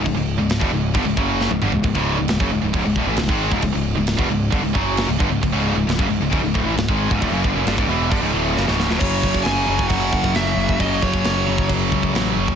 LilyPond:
<<
  \new Staff \with { instrumentName = "Lead electric guitar" } { \time 4/4 \key cis \minor \tempo 4 = 134 r1 | r1 | r1 | r1 |
r1 | cis''4 gis''4 fis''4 e''4 | dis''8 cis''4. r2 | }
  \new Staff \with { instrumentName = "Distorted electric guitar" } { \clef bass \time 4/4 \key cis \minor <cis, gis,>16 <cis, gis,>8 <cis, gis,>8 <e, b,>16 <cis, gis,>8 <g, d>16 <cis, gis,>16 <fis, cis fis>8. <cis, gis,>16 <g, d>16 <cis, gis,>16 | <cis, gis,>16 <cis, gis, cis>8 <cis, gis,>16 <cis, gis,>16 <fis, cis>16 <cis, gis,>16 <cis, gis,>16 <cis, gis,>16 <cis, gis,>16 <d, a,>16 <a, e>16 <cis, gis,>16 <gis, dis gis>8 <cis, gis,>16 | <cis, gis,>16 <cis, gis,>8 <cis, gis,>8 <e, b,>16 <cis, gis,>8 <g, d>16 <cis, gis,>16 <fis, cis fis>8. <cis, gis,>16 <g, d>16 <cis, gis,>16 | <cis, gis,>16 <cis, gis, cis>8 <cis, gis,>16 <cis, gis,>16 <fis, cis>16 <cis, gis,>16 <cis, gis,>16 <cis, gis,>16 <cis, gis,>16 <d, a,>16 <a, e>16 <cis, gis,>16 <gis, dis gis>8 <cis, gis,>16 |
<d, a,>16 <fis, cis>16 <g, d>16 <fis, cis>16 <g, d>16 <cis, gis,>16 <e, b, e>8 <g, d>16 <cis, gis,>16 <d, a, d>8 <fis, cis>16 <cis, gis, cis>8 <d, a,>16 | <fis, cis fis>1 | <fis, cis fis>1 | }
  \new Staff \with { instrumentName = "Distorted electric guitar" } { \clef bass \time 4/4 \key cis \minor <cis, gis,>16 <cis, gis,>8 <cis, gis,>8 <e, b,>16 <cis, gis,>8 <g, d>16 <cis, gis,>16 <fis, cis fis>8. <cis, gis,>16 <g, d>16 <cis, gis,>16 | <cis, gis,>16 <cis, gis, cis>8 <cis, gis,>16 <cis, gis,>16 <fis, cis>16 <cis, gis,>16 <cis, gis,>16 <cis, gis,>16 <cis, gis,>16 <d, a,>16 <a, e>16 <cis, gis,>16 <gis, dis gis>8 <cis, gis,>16 | <cis, gis,>16 <cis, gis,>8 <cis, gis,>8 <e, b,>16 <cis, gis,>8 <g, d>16 <cis, gis,>16 <fis, cis fis>8. <cis, gis,>16 <g, d>16 <cis, gis,>16 | <cis, gis,>16 <cis, gis, cis>8 <cis, gis,>16 <cis, gis,>16 <fis, cis>16 <cis, gis,>16 <cis, gis,>16 <cis, gis,>16 <cis, gis,>16 <d, a,>16 <a, e>16 <cis, gis,>16 <gis, dis gis>8 <cis, gis,>16 |
<d, a,>16 <fis, cis>16 <g, d>16 <fis, cis>16 <g, d>16 <cis, gis,>16 <e, b, e>8 <g, d>16 <cis, gis,>16 <d, a, d>8 <fis, cis>16 <cis, gis, cis>8 <d, a,>16 | <fis, cis fis>4. <fis, cis fis>4. <fis, cis fis>4 | <fis, cis fis>4. <fis, cis fis>4. <fis, cis fis>4 | }
  \new Staff \with { instrumentName = "Picked electric bass" } { \clef bass \time 4/4 \key cis \minor cis,,16 cis,,8 cis,,8 e,,16 cis,,8 g,,16 cis,,16 fis,,8. cis,,16 g,,16 cis,,16 | cis,,16 cis,,8 cis,,16 cis,,16 fis,,16 cis,,16 cis,,16 cis,,16 cis,,16 d,,16 a,,16 cis,,16 gis,,8 cis,,16 | cis,,16 cis,,8 cis,,8 e,,16 cis,,8 g,,16 cis,,16 fis,,8. cis,,16 g,,16 cis,,16 | cis,,16 cis,,8 cis,,16 cis,,16 fis,,16 cis,,16 cis,,16 cis,,16 cis,,16 d,,16 a,,16 cis,,16 gis,,8 cis,,16 |
d,,16 fis,,16 g,,16 fis,,16 g,,16 cis,,16 e,,8 g,,16 cis,,16 d,,8 fis,,16 cis,,8 d,,16 | fis,,8 fis,,8 fis,,8 fis,,8 fis,,8 fis,,8 fis,,8 fis,,8 | fis,,8 fis,,8 fis,,8 fis,,8 fis,,8 cis,8 a,,8 fis,,8 | }
  \new DrumStaff \with { instrumentName = "Drums" } \drummode { \time 4/4 <cymc bd>4 <cymc sn>16 bd8. <cymc bd>8 bd8 sn16 tommh16 toml16 tomfh16 | <cymc bd>16 bd8. <cymc sn>16 bd8. <cymc bd>8 bd8 <cymc sn>16 bd8 bd16 | <cymc bd>4 <cymc sn>16 bd8. <cymc bd>8 bd8 <cymc sn>8 bd8 | <cymc bd>4 <cymc sn>16 bd8. <cymc bd>8 bd8 <cymc sn>16 bd8 bd16 |
<cymc bd>8 bd8 <cymc sn>16 bd8. <cymc bd>4 sn16 sn16 sn16 sn16 | <cymc bd>8 bd16 bd16 <cymc sn>8. bd16 <cymc bd>8 bd16 bd16 <cymc sn>8. bd16 | <cymc bd>8 bd16 bd16 <cymc sn>8. bd16 <cymc bd>8 bd16 bd16 <cymc sn>8. bd16 | }
>>